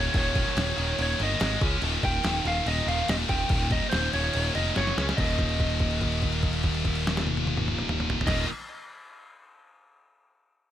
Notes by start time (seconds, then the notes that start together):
Already playing: D#2 A#2 D#3 C#5
0.14 D#1 D#2 A#2 D#3 C#5, kick, crash
0.34 D#2 A#2 D#3, kick, crash
0.47 snare
0.55 D#1 D#2 A#2 D#3, snare, crash
0.76 D#1 D#2 A#2 D#3, crash
0.97 D#1 D#2 A#2 D#3, crash
1.02 C#5
1.19 G1 D#2 A#2 D#3, crash
1.23 D#5
1.40 G#1 G#2 D#3 G#3, snare, crash
1.61 C#2 C#3 G#3 C#4, kick, crash
1.82 D#1 D#2 A#2 D#3, crash
2.03 D#1 D#2 A#2 D#3 G5, kick, crash
2.23 D#1 D#2 A#2 D#3, snare, crash
2.45 D#1 D#2 A#2 D#3 F5, crash
2.66 D#1 D#2 A#2 D#3 D#5, crash
2.87 D#1 D#2 A#2 D#3 F5, crash
3.08 D#1 D#2 A#2 D#3 D#5, snare, crash
3.28 D#1 D#2 A#2 D#3 G5, kick, crash
3.49 D#1 D#2 A#2 D#3, kick, crash
3.71 D#2 A#2 D#3 D#5, kick, crash
3.82 snare
3.90 D#1 D#2 C5, snare, crash
3.94 A#2 D#3
4.13 D#1 D#2 A#2 D#3 C#5, crash
4.33 D#1 D#2 A#2 D#3, crash
4.55 F1 D#2 A#2 D#3 D#5, crash
4.76 F#1 F#2 C#3 F#3 C#5, snare
4.87 snare
4.97 C#2 C#3 G#3 C#4, snare
5.09 snare
5.17 D#1 D#2 A#2 D#5, kick, crash
5.22 D#3
5.39 kick, crash
5.49 crash
5.60 kick, crash
5.70 crash
5.80 kick, crash
5.91 crash
6.01 kick, crash
6.12 crash
6.22 kick, crash
6.33 crash
6.43 kick, crash
6.53 crash
6.63 kick, crash
6.74 crash
6.85 kick, crash
6.95 crash
7.07 snare
7.17 snare
7.27 high tom
7.37 high tom
7.47 high tom
7.57 mid tom
7.68 mid tom
7.79 mid tom
7.89 mid tom
8.00 mid tom
8.10 floor tom
8.21 floor tom
8.25 D#1 D#2 A#2 D#5, kick, snare, crash
8.30 D#3